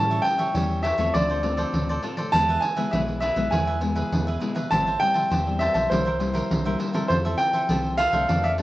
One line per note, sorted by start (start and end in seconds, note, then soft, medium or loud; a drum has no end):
0.00 0.20 A2 medium
0.00 0.51 A2 soft
0.00 0.49 G3 soft
0.00 0.50 C#4 medium
0.00 0.50 E4 medium
0.00 0.25 A5 loud
0.10 0.24 A4 medium
0.10 0.24 C#5 medium
0.10 0.24 E5 medium
0.10 pandeiro soft
0.22 0.79 G5 medium
0.22 muted cavaquinho stroke soft
0.22 pandeiro medium
0.38 0.53 A4 soft
0.38 0.53 C#5 medium
0.38 0.53 E5 medium
0.38 pandeiro medium
0.53 0.93 E2 loud
0.53 1.11 E3 medium
0.53 0.82 G3 medium
0.53 0.82 C#4 medium
0.53 0.83 E4 medium
0.53 0.82 G4 medium
0.53 0.83 A4 soft
0.53 0.83 C#5 medium
0.53 0.84 E5 medium
0.53 pandeiro medium
0.71 pandeiro soft
0.83 0.98 G4 medium
0.83 0.98 A4 medium
0.83 0.97 C#5 medium
0.83 1.11 E5 medium
0.83 0.96 E5 medium
0.83 pandeiro medium
0.98 1.11 E2 medium
0.98 1.39 A3 medium
0.98 1.39 C4 medium
0.98 1.39 F4 medium
0.98 1.13 A4 medium
0.98 1.13 C#5 medium
0.98 1.12 E5 medium
0.98 pandeiro medium
1.14 1.65 D2 loud
1.14 1.71 D3 medium
1.14 1.28 F4 medium
1.14 1.28 A4 medium
1.14 1.28 C5 medium
1.14 1.99 D5 medium
1.14 1.28 D5 medium
1.14 pandeiro medium
1.30 1.42 A4 soft
1.30 1.43 C5 medium
1.30 1.43 D5 medium
1.30 pandeiro soft
1.43 1.99 A3 medium
1.43 1.99 C4 medium
1.43 1.99 F4 medium
1.43 muted cavaquinho stroke soft
1.43 pandeiro medium
1.57 1.88 A4 medium
1.57 1.87 C5 medium
1.57 1.87 D5 medium
1.57 pandeiro medium
1.74 1.99 D2 medium
1.74 2.30 A2 medium
1.74 pandeiro medium
1.89 2.02 A4 soft
1.89 2.03 C5 medium
1.89 2.03 D5 medium
1.89 pandeiro soft
2.03 2.21 A3 medium
2.03 2.21 C4 soft
2.03 2.17 F4 soft
2.03 2.21 F4 medium
2.03 2.17 A4 soft
2.03 2.17 C5 soft
2.03 2.16 D5 soft
2.03 pandeiro medium
2.17 2.32 A4 medium
2.17 2.32 C5 medium
2.17 2.31 D5 medium
2.17 pandeiro medium
2.32 2.59 E2 loud
2.32 2.90 E3 soft
2.32 2.73 G#3 soft
2.32 2.74 B3 medium
2.32 2.47 E4 soft
2.32 2.74 E4 medium
2.32 2.48 G#4 medium
2.32 2.48 B4 medium
2.32 2.48 E5 medium
2.32 2.63 A5 loud
2.32 pandeiro medium
2.49 2.62 G#4 medium
2.49 2.62 B4 medium
2.49 2.62 E5 medium
2.49 pandeiro soft
2.61 2.93 G#5 medium
2.61 muted cavaquinho stroke soft
2.61 pandeiro medium
2.77 2.88 G#3 medium
2.77 2.88 B3 medium
2.77 2.88 E4 medium
2.77 2.92 G#4 medium
2.77 2.91 B4 medium
2.77 2.91 E5 medium
2.77 pandeiro medium
2.91 3.31 B1 medium
2.91 3.49 B2 medium
2.91 3.21 G#3 medium
2.91 3.21 B3 medium
2.91 3.20 E4 soft
2.91 3.21 E4 medium
2.91 3.21 G#4 medium
2.91 3.21 B4 medium
2.91 2.98 E5 medium
2.91 3.22 E5 medium
2.91 pandeiro medium
3.08 pandeiro soft
3.20 3.36 E4 medium
3.20 3.36 G#4 medium
3.20 3.36 B4 medium
3.20 3.52 E5 medium
3.20 3.35 E5 medium
3.20 pandeiro medium
3.36 3.50 B1 medium
3.36 3.77 G#3 medium
3.36 3.77 B3 medium
3.36 3.78 E4 medium
3.36 3.51 G#4 medium
3.36 3.51 B4 medium
3.36 3.51 E5 medium
3.36 pandeiro medium
3.51 4.03 E2 loud
3.51 4.09 E3 medium
3.51 3.66 E4 soft
3.51 3.66 G#4 soft
3.51 3.66 B4 soft
3.51 3.66 E5 soft
3.51 4.37 G#5 medium
3.51 pandeiro medium
3.67 3.80 G#4 soft
3.67 3.80 B4 medium
3.67 3.81 E5 medium
3.67 pandeiro soft
3.81 4.37 G#3 medium
3.81 4.37 B3 medium
3.81 4.37 E4 medium
3.81 muted cavaquinho stroke soft
3.81 pandeiro medium
3.95 4.26 G#4 medium
3.95 4.25 B4 medium
3.95 4.25 E5 medium
3.95 pandeiro medium
4.12 4.38 E2 medium
4.12 4.69 B2 medium
4.12 pandeiro medium
4.27 4.40 G#4 medium
4.27 4.40 B4 medium
4.27 4.40 E5 medium
4.27 pandeiro soft
4.40 4.59 G#3 medium
4.40 4.59 B3 medium
4.40 4.55 E4 soft
4.40 4.60 E4 medium
4.40 4.55 G#4 soft
4.40 4.54 B4 soft
4.40 4.53 E5 soft
4.40 pandeiro medium
4.55 4.70 G#4 soft
4.55 4.70 B4 medium
4.55 4.69 E5 medium
4.55 pandeiro medium
4.71 4.97 A1 medium
4.71 5.28 A2 soft
4.71 4.89 G3 soft
4.71 4.89 C4 soft
4.71 4.90 E4 medium
4.71 4.85 G4 soft
4.71 4.85 C5 soft
4.71 4.85 E5 medium
4.71 4.99 A5 loud
4.71 4.85 A5 medium
4.71 pandeiro medium
4.86 4.99 C5 medium
4.86 4.99 E5 medium
4.86 5.00 A5 medium
4.86 pandeiro soft
5.00 5.41 G3 soft
5.00 5.41 C4 medium
5.00 5.42 E4 medium
5.00 5.62 G5 loud
5.00 muted cavaquinho stroke soft
5.00 pandeiro medium
5.14 5.30 C5 soft
5.14 5.29 E5 medium
5.14 5.29 A5 medium
5.14 pandeiro medium
5.30 5.69 E2 medium
5.30 5.88 E3 medium
5.30 5.59 G4 soft
5.30 5.59 C5 soft
5.30 5.60 E5 soft
5.30 5.60 A5 medium
5.30 pandeiro medium
5.46 5.86 G3 medium
5.46 5.86 C4 medium
5.46 5.86 E4 medium
5.46 pandeiro soft
5.59 5.74 G4 medium
5.59 5.75 C5 medium
5.59 5.88 E5 medium
5.59 5.74 E5 medium
5.59 5.73 A5 medium
5.59 pandeiro medium
5.74 5.88 B1 loud
5.74 5.90 C5 medium
5.74 5.89 E5 medium
5.74 5.89 A5 medium
5.74 pandeiro medium
5.90 6.42 C2 loud
5.90 6.47 C3 medium
5.90 6.08 G3 medium
5.90 6.08 A#3 medium
5.90 6.04 E4 soft
5.90 6.08 E4 medium
5.90 6.05 A#4 soft
5.90 6.76 C5 medium
5.90 6.05 C5 medium
5.90 6.05 E5 medium
5.90 pandeiro medium
6.06 6.19 A#4 soft
6.06 6.19 C5 soft
6.06 6.19 E5 medium
6.06 pandeiro soft
6.20 6.60 G3 medium
6.20 6.61 A#3 medium
6.20 6.61 E4 medium
6.20 muted cavaquinho stroke soft
6.20 pandeiro medium
6.33 6.64 A#4 medium
6.33 6.63 C5 medium
6.33 6.63 E5 medium
6.33 pandeiro medium
6.50 6.76 C2 medium
6.50 7.07 G2 soft
6.50 pandeiro medium
6.65 6.91 G3 medium
6.65 6.91 A#3 medium
6.65 6.91 E4 medium
6.65 6.78 A#4 medium
6.65 6.79 C5 medium
6.65 6.79 E5 medium
6.65 pandeiro soft
6.79 6.93 E4 soft
6.79 6.93 A#4 soft
6.79 6.93 C5 medium
6.79 6.92 E5 medium
6.79 pandeiro medium
6.93 7.24 C4 medium
6.93 7.25 E4 medium
6.93 7.25 A4 medium
6.93 7.09 A#4 medium
6.93 7.08 C5 medium
6.93 7.08 E5 medium
6.93 pandeiro medium
7.08 7.35 F2 loud
7.08 7.67 F3 medium
7.08 7.24 F4 soft
7.08 7.24 A4 medium
7.08 7.15 C5 medium
7.08 7.24 C5 medium
7.08 7.24 E5 soft
7.08 pandeiro medium
7.25 7.65 C4 medium
7.25 7.66 E4 medium
7.25 7.38 A4 medium
7.25 7.66 A4 medium
7.25 7.38 C5 medium
7.25 7.39 E5 medium
7.25 pandeiro soft
7.38 7.94 G5 medium
7.38 muted cavaquinho stroke soft
7.38 pandeiro medium
7.53 7.68 A4 medium
7.53 7.68 C5 medium
7.53 7.68 E5 medium
7.53 pandeiro medium
7.69 8.08 C2 loud
7.69 8.27 C3 medium
7.69 7.98 C4 medium
7.69 7.98 E4 medium
7.69 7.97 F4 medium
7.69 7.97 A4 medium
7.69 7.98 A4 medium
7.69 7.98 C5 medium
7.69 7.98 E5 medium
7.69 pandeiro medium
7.84 pandeiro soft
7.98 8.12 F4 medium
7.98 8.13 A4 medium
7.98 8.12 C5 medium
7.98 8.11 E5 medium
7.98 8.45 F5 loud
7.98 pandeiro medium
8.12 8.26 C2 loud
8.12 8.54 A3 medium
8.12 8.54 D4 medium
8.12 8.27 A4 medium
8.12 8.54 A4 medium
8.12 8.28 C5 medium
8.12 8.27 E5 medium
8.12 pandeiro medium
8.28 8.62 F2 loud
8.28 8.62 F3 medium
8.28 8.42 D4 soft
8.28 8.43 A4 soft
8.28 8.43 D5 soft
8.28 8.42 F5 medium
8.28 pandeiro medium
8.44 8.57 A4 soft
8.44 8.57 D5 medium
8.44 8.51 E5 medium
8.44 8.57 F5 medium
8.44 pandeiro soft
8.58 8.62 A3 medium
8.58 8.62 D4 medium
8.58 muted cavaquinho stroke soft
8.58 pandeiro medium